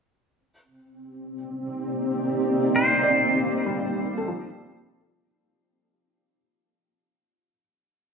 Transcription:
0.35 C4
0.58 G4
0.82 A#3
0.88 D5
1.02 D#4
2.76 C5
3.03 D5
3.66 G3
4.17 A4
4.28 F3

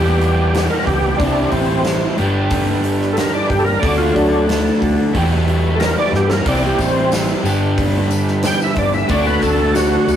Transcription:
Already playing: E2 B2 E3 G3 B3 E4 G4 B4
0.21 open hi-hat
0.55 snare, open hi-hat
0.70 A#4
0.87 C#2 G4, kick, open hi-hat
1.18 C2 C3 E3 G3 C4 D4 E4 C5, kick, open hi-hat
1.22 G4
1.51 A1 C4, kick, open hi-hat
1.85 snare, open hi-hat
2.15 G2 D3 G3 B3 D4 B4, open hi-hat
2.19 G1 B3 D4 G4
2.51 kick, open hi-hat
2.84 open hi-hat
3.01 snare
3.13 A4
3.17 A#4, snare, open hi-hat
3.35 D5
3.50 G1 G4, kick, open hi-hat
3.59 A4
3.64 A#4
3.79 D3 F#3 A3 D4 A4 D5
3.83 D2 D4 F#4, kick, open hi-hat
3.98 F4
4.14 D2 F#3 D4, kick, open hi-hat
4.49 snare, open hi-hat
4.82 D2, kick, open hi-hat
5.12 E2 B2 E3 G3 B3 E4 B4, kick, open hi-hat
5.17 G4
5.48 open hi-hat
5.75 A4
5.80 A#4, snare, open hi-hat
5.98 D5
6.12 G2 G4, snare
6.28 A4, snare
6.33 A#4
6.45 C2 C3 E3 G3 C4 E4 G4 C5 D5, kick, open hi-hat
6.63 G4, tambourine
6.79 A1, kick, open hi-hat, tambourine
6.83 C4
7.12 snare, open hi-hat, tambourine
7.29 tambourine
7.43 G1 G2 D3 G3 B3 D4, open hi-hat, tambourine
7.47 G3 B3 D4 G4 B4
7.78 kick, open hi-hat
8.11 open hi-hat, tambourine
8.27 snare, tambourine
8.43 G5, snare, open hi-hat, tambourine
8.62 E5, tambourine
8.76 G1 D5, kick, open hi-hat, tambourine
8.94 E5, tambourine
9.08 D2 D3 F#3 A3 D4 F#4 D5, kick, open hi-hat
9.12 A3 D4 A4
9.27 B4, tambourine
9.42 D2 A4, kick, open hi-hat, tambourine
9.74 F#4, snare, open hi-hat, tambourine
9.93 tambourine
10.08 D2, open hi-hat, tambourine

